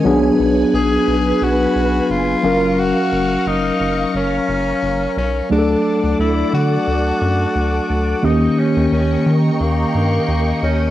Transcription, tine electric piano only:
0.04 2.39 F#3 medium
0.04 2.40 B3 medium
0.04 2.40 D4 medium
0.04 2.41 G#4 medium
2.43 5.12 F#3 medium
2.43 5.13 C#4 medium
2.43 5.13 A#4 medium
2.43 5.13 F5 medium
5.50 8.19 F#3 medium
5.50 8.19 A3 medium
5.50 8.20 D4 medium
5.50 5.59 G#4 medium
5.59 8.23 A4 medium
8.22 10.90 D#3 medium
8.22 10.90 A#3 medium
8.22 10.90 C#4 medium
8.22 10.90 G4 medium

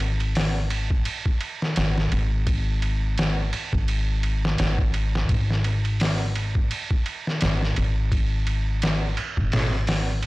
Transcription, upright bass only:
0.00 1.03 G#1 medium
1.77 2.08 G#1 medium
2.12 3.50 G#1 medium
3.73 4.56 G#1 medium
4.60 5.27 G#1 medium
5.29 6.68 G#1 medium
7.42 7.74 G#1 medium
7.78 9.15 G#1 medium
9.37 10.21 G#1 medium

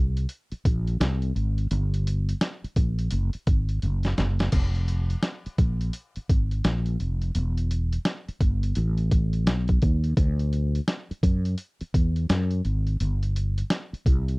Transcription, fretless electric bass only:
0.00 0.25 C2 medium
0.52 muted fretless electric bass stroke medium
0.65 0.96 A#1 medium
1.00 1.31 C2 loud
1.35 1.66 G#1 medium
1.71 2.32 G1 loud
2.64 muted fretless electric bass stroke medium
2.77 3.07 A#1 medium
3.12 3.31 F#1 loud
3.34 muted fretless electric bass stroke soft
3.47 3.78 G#1 medium
3.83 4.13 F#1 medium
4.18 4.48 F#1 medium
4.53 5.14 F1 medium
5.46 muted fretless electric bass stroke soft
5.59 5.89 A#1 medium
6.17 muted fretless electric bass stroke soft
6.30 6.60 G#1 medium
6.65 6.95 A#1 medium
7.00 7.31 F1 medium
7.35 7.96 E1 loud
8.28 muted fretless electric bass stroke soft
8.41 8.71 G1 medium
8.77 9.47 A1 loud
9.47 9.77 B1 medium
9.83 10.13 D#2 medium
10.17 10.79 D2 loud
11.11 muted fretless electric bass stroke medium
11.23 11.54 F#2 medium
11.81 muted fretless electric bass stroke soft
11.94 12.25 E2 medium
12.30 12.60 F#2 medium
12.65 12.95 G#1 medium
13.00 13.61 G1 medium
13.93 muted fretless electric bass stroke soft
14.06 14.37 C2 medium

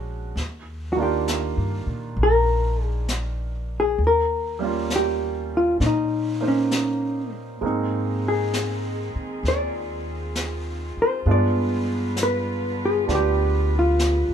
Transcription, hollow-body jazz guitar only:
0.93 1.00 F#4 soft
1.03 2.23 G4 medium
2.23 2.83 A#4 medium
2.83 3.07 G#4 medium
3.80 4.02 G#4 medium
4.07 4.95 A#4 medium
4.96 5.57 G4 medium
5.57 5.80 F4 medium
5.81 5.83 D4 soft
5.86 6.48 D#4 medium
6.48 7.33 C#4 soft
8.28 9.48 G#4 medium
9.48 10.34 D5 medium
11.02 11.29 C5 medium
11.31 12.23 D5 medium
12.23 12.84 B4 medium
12.85 13.12 G#4 medium
13.15 13.76 G4 medium
13.79 14.34 F4 medium

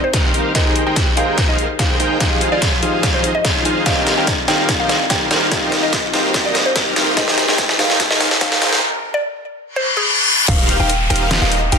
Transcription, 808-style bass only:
0.00 0.12 D#1 loud
0.14 0.32 D#2 medium
0.34 0.53 D#1 medium
0.86 1.15 D#1 medium
1.17 1.46 D#1 medium
1.79 1.98 D#2 medium
2.00 2.19 D#2 loud
2.52 2.81 F1 loud
3.14 3.43 F1 loud
3.65 3.84 F2 medium
6.96 7.15 D#2 loud
10.48 10.78 D#1 medium
10.80 11.08 D#1 loud
11.10 11.40 D#1 loud
11.42 11.70 D#1 loud
11.72 11.78 D#1 loud

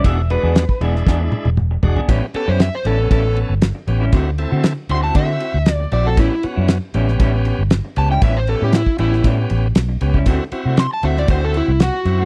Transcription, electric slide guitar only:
2.36 2.48 A4 medium
2.49 2.60 C5 medium
2.62 2.74 E5 medium
2.75 2.86 C5 medium
2.87 3.11 A4 medium
3.12 3.36 A4 loud
4.91 5.03 C6 loud
5.04 5.15 A5 medium
5.16 5.73 E5 loud
5.73 5.90 D5 loud
5.93 6.06 D5 medium
6.07 6.18 A4 medium
6.19 6.43 E4 medium
7.98 8.11 A5 loud
8.12 8.23 G5 medium
8.24 8.36 E5 medium
8.37 8.48 C5 medium
8.49 8.61 A4 medium
8.64 8.74 G4 medium
8.75 8.99 E4 medium
9.00 9.24 E4 medium
10.79 10.92 C6 loud
10.94 11.04 A5 medium
11.05 11.17 E5 medium
11.19 11.30 D5 medium
11.31 11.43 C5 medium
11.45 11.55 A4 medium
11.57 11.81 E4 medium
11.83 12.25 F#4 medium

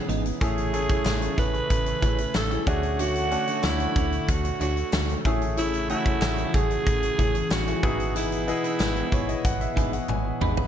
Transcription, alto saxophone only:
0.43 1.35 G#4 loud
1.39 2.38 B4 loud
2.36 2.68 A4 loud
2.68 3.02 G#4 medium
3.00 3.66 F#4 loud
3.65 4.31 E4 medium
4.30 4.61 F#4 medium
4.62 5.22 F#4 medium
5.58 5.88 E4 medium
5.90 6.50 E4 loud
6.55 7.54 G#4 loud
7.52 8.16 F#4 loud
8.17 10.06 E4 medium

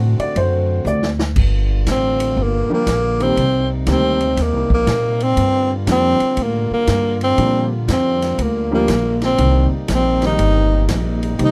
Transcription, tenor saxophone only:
1.91 2.44 C4 medium
2.43 2.73 A#3 medium
2.74 3.24 A#3 medium
3.23 3.71 C4 medium
3.92 4.44 C4 medium
4.42 4.73 A#3 medium
4.74 5.24 A#3 medium
5.23 5.72 C4 loud
5.92 6.44 C4 medium
6.43 6.73 A#3 medium
6.73 7.19 A#3 medium
7.24 7.69 C4 medium
7.93 8.45 C4 medium
8.43 8.74 A#3 medium
8.74 9.20 A#3 medium
9.25 9.70 C4 loud
9.95 10.23 C4 medium
10.27 10.87 D#4 medium
11.44 11.51 D#4 medium

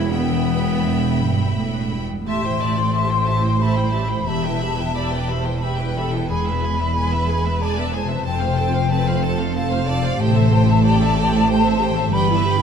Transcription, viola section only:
0.00 0.11 E4 medium
0.11 1.56 B3 medium
2.27 2.43 G4 soft
2.27 2.43 E5 soft
2.44 2.62 E4 soft
2.44 2.62 C5 soft
2.61 2.78 G4 soft
2.61 2.79 E5 soft
2.78 2.95 E4 soft
2.78 2.95 C5 soft
2.94 3.10 G4 soft
2.94 3.10 E5 soft
3.11 3.28 E4 soft
3.11 3.28 C5 soft
3.27 3.44 G4 soft
3.27 3.44 E5 soft
3.43 3.60 E4 soft
3.43 3.61 C5 soft
3.61 3.76 G4 soft
3.61 3.77 E5 soft
3.78 3.94 E4 soft
3.78 3.95 C5 soft
3.93 4.11 G4 soft
3.93 4.11 E5 soft
4.10 4.27 E4 soft
4.10 4.28 C5 soft
4.28 4.44 G4 soft
4.28 4.44 E5 soft
4.45 4.62 E4 soft
4.45 4.62 B4 soft
4.61 4.78 G4 soft
4.61 4.78 E5 soft
4.78 4.95 E4 soft
4.78 4.95 B4 soft
4.94 5.11 G4 soft
4.94 5.10 E5 soft
5.12 5.29 E4 soft
5.12 5.29 B4 soft
5.29 5.46 G4 soft
5.29 5.46 E5 soft
5.46 5.63 E4 soft
5.46 5.63 B4 soft
5.62 5.78 G4 soft
5.62 5.78 E5 soft
5.80 5.97 E4 soft
5.80 5.97 B4 soft
5.97 6.13 G4 soft
5.97 6.14 E5 soft
6.14 6.30 E4 soft
6.14 6.30 B4 soft
6.29 6.45 G#3 soft
6.29 6.45 G#4 soft
6.48 6.64 B3 soft
6.48 6.64 B4 soft
6.64 6.80 G#3 soft
6.64 6.80 G#4 soft
6.81 6.97 B3 soft
6.81 6.97 B4 soft
6.96 7.11 G#3 soft
6.96 7.11 G#4 soft
7.13 7.29 B3 soft
7.13 7.29 B4 soft
7.28 7.45 G#3 soft
7.28 7.44 G#4 soft
7.45 7.61 B3 soft
7.45 7.61 B4 soft
7.61 7.76 G#3 soft
7.61 7.76 G#4 soft
7.77 7.93 B3 soft
7.77 7.93 B4 soft
7.94 8.10 G#3 soft
7.94 8.10 G#4 soft
8.10 8.26 B3 soft
8.10 8.26 B4 soft
8.26 8.41 C4 soft
8.26 8.41 A4 soft
8.42 8.58 A3 soft
8.42 8.58 C5 soft
8.57 8.74 C4 soft
8.57 8.74 A4 soft
8.73 8.90 A3 soft
8.73 8.90 C5 soft
8.89 9.05 C4 soft
8.89 9.05 A4 soft
9.06 9.23 A3 soft
9.06 9.23 C5 soft
9.22 9.39 C4 soft
9.22 9.39 A4 soft
9.39 9.55 A3 soft
9.39 9.55 C5 soft
9.55 9.71 C4 soft
9.55 9.71 A4 soft
9.71 9.88 A3 soft
9.71 9.88 C5 soft
9.86 10.03 C4 soft
9.86 10.03 A4 soft
10.03 10.17 A3 soft
10.03 10.20 C5 soft
10.18 10.34 A3 medium
10.18 10.34 G4 medium
10.34 10.52 C4 soft
10.34 10.52 A4 soft
10.51 10.68 A3 soft
10.51 10.68 G4 soft
10.67 10.84 C4 soft
10.67 10.84 A4 soft
10.84 10.99 A3 soft
10.84 10.99 G4 soft
10.99 11.16 C4 soft
10.99 11.16 A4 soft
11.15 11.32 A3 soft
11.15 11.32 G4 soft
11.32 11.48 C4 soft
11.32 11.48 A4 soft
11.47 11.62 A3 medium
11.47 11.62 G4 medium
11.62 11.80 C4 soft
11.62 11.79 A4 soft
11.79 11.96 A3 soft
11.79 11.96 G4 medium
11.95 12.12 C4 soft
11.95 12.12 A4 soft
12.11 12.27 G3 medium
12.11 12.27 G4 medium
12.28 12.45 B3 soft
12.28 12.45 E4 medium
12.43 12.61 G3 medium
12.43 12.61 G4 medium

